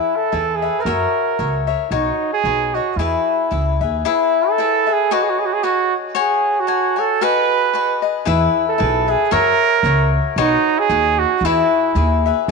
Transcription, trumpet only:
0.00 0.18 E4 medium
0.16 0.57 A4 medium
0.55 0.81 G#4 medium
0.79 1.65 A#4 medium
0.79 0.82 B4 medium
1.90 2.29 D#4 medium
2.33 2.76 G#4 medium
2.74 2.99 F#4 medium
2.97 3.80 E4 medium
4.07 4.51 E4 medium
4.50 4.94 A4 medium
4.93 5.14 G#4 medium
5.13 5.24 F#4 medium
5.23 5.31 G#4 medium
5.30 5.40 F#4 medium
5.39 5.47 G#4 medium
5.46 5.55 F#4 medium
5.53 5.65 G#4 medium
5.64 5.94 F#4 medium
6.19 6.61 G#4 medium
6.60 7.01 F#4 medium
6.99 7.24 A4 medium
7.23 8.04 B4 medium
8.27 8.65 E4 medium
8.68 9.11 A4 medium
9.10 9.34 G#4 medium
9.33 10.13 A#4 loud
10.38 10.80 D#4 medium
10.79 11.20 G#4 loud
11.19 11.46 F#4 medium
11.45 12.25 E4 medium
12.47 12.51 G#4 medium

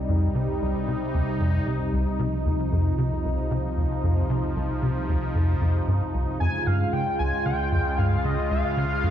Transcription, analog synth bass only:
0.09 0.28 F2 medium
0.35 0.48 C3 medium
0.61 0.74 C2 medium
0.88 0.95 C3 medium
1.14 1.22 D#2 medium
1.40 1.59 F2 medium
1.67 1.79 C3 medium
1.93 2.06 C2 medium
2.19 2.27 C3 medium
2.46 2.53 D#2 medium
2.72 2.91 F2 medium
2.98 3.11 C3 medium
3.25 3.37 C2 medium
3.51 3.58 C3 medium
3.77 3.85 D#2 medium
4.04 4.22 F2 medium
4.30 4.42 C3 medium
4.56 4.69 C2 medium
4.82 4.90 C3 medium
5.09 5.16 D#2 medium
5.35 5.54 F2 medium
5.61 5.80 F2 medium
5.88 6.00 G2 medium
6.14 6.27 C2 medium
6.40 6.48 F2 medium
6.67 6.86 G2 medium
6.93 7.06 C#3 medium
7.19 7.32 C#2 medium
7.46 7.53 C#3 medium
7.72 7.79 F2 medium
7.98 8.17 G2 medium
8.24 8.37 C#3 medium
8.51 8.63 C#2 medium
8.77 8.85 C#3 medium
9.03 9.10 F2 medium

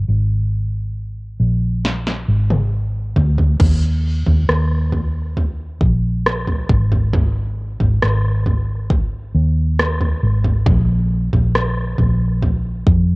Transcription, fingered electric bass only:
0.08 1.36 G#1 medium
1.40 2.24 A#1 medium
2.28 3.12 G#1 medium
3.17 3.58 D2 medium
3.60 4.23 D#2 medium
4.27 4.47 D#2 medium
4.49 5.77 D#2 medium
5.81 6.65 A#1 medium
6.69 7.76 G#1 medium
7.80 8.01 G#1 medium
8.03 9.31 G#1 medium
9.34 10.18 D#2 medium
10.23 10.64 G#1 medium
10.67 11.29 A#1 loud
11.33 11.95 A#1 medium
11.99 12.83 A#1 medium
12.87 13.16 F2 medium

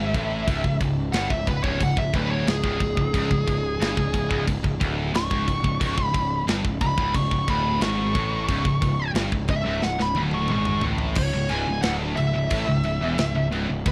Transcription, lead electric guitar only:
0.00 0.76 E5 loud
1.13 1.30 F#5 loud
1.30 1.47 E5 loud
1.47 1.63 B4 loud
1.63 1.80 C#5 loud
1.83 1.98 F#5 loud
1.99 2.14 E5 loud
2.15 2.31 B4 medium
2.31 2.47 C#5 loud
2.48 4.44 G#4 loud
5.15 6.05 C#6 loud
6.05 6.45 B5 loud
6.81 7.14 B5 loud
7.16 7.48 C#6 loud
7.50 7.82 B5 loud
7.82 9.12 C#6 loud
9.50 9.82 E5 loud
9.83 9.99 F#5 loud
10.02 10.17 B5 loud
10.35 10.50 C#6 loud
10.52 10.83 C#6 loud
11.18 11.52 C#5 medium
11.50 11.82 G#5 medium
11.82 11.91 F#5 loud
12.16 13.48 E5 medium
13.88 13.92 C#5 loud

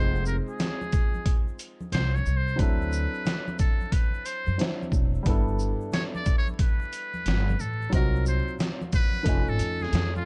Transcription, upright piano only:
0.00 2.54 G#3 medium
0.00 2.55 C4 medium
0.00 2.55 D#4 medium
0.00 2.56 F4 medium
0.00 2.57 C5 medium
2.56 4.54 F#3 medium
2.56 4.54 C4 medium
2.56 4.55 D4 medium
2.60 4.56 E4 medium
2.60 4.57 A4 medium
4.58 5.25 F#3 medium
4.58 5.26 C4 soft
4.58 5.25 D4 soft
4.58 5.26 E4 soft
4.58 5.27 C5 soft
5.23 7.87 G3 medium
5.23 7.88 B3 medium
5.23 7.89 D4 medium
5.28 7.89 E4 medium
5.28 7.90 A4 medium
7.90 9.23 A#2 medium
7.90 9.22 F#3 medium
7.90 9.23 C4 medium
7.94 9.24 D#4 medium
7.94 9.25 F#4 medium
9.23 10.25 F3 medium
9.23 10.25 A3 medium
9.23 10.25 C#4 medium
9.27 10.25 D#4 medium
9.27 10.25 G#5 medium

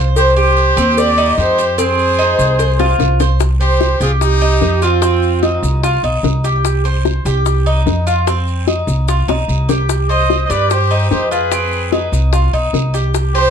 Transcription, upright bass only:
0.00 0.71 C2 medium
0.77 1.34 D#2 loud
1.38 2.33 F2 medium
2.38 2.96 C2 medium
2.99 3.95 C2 medium
4.01 4.58 C2 medium
4.61 5.57 F2 medium
5.63 6.01 C2 loud
6.03 6.22 B1 medium
6.23 7.19 C2 medium
7.25 7.82 C2 loud
7.86 8.82 F2 medium
8.87 9.25 C2 medium
9.28 9.47 B1 medium
9.48 10.44 C2 medium
10.50 11.07 G2 loud
11.11 12.07 F2 medium
12.12 12.50 C2 medium
12.53 12.72 B1 medium
12.73 13.50 C2 medium

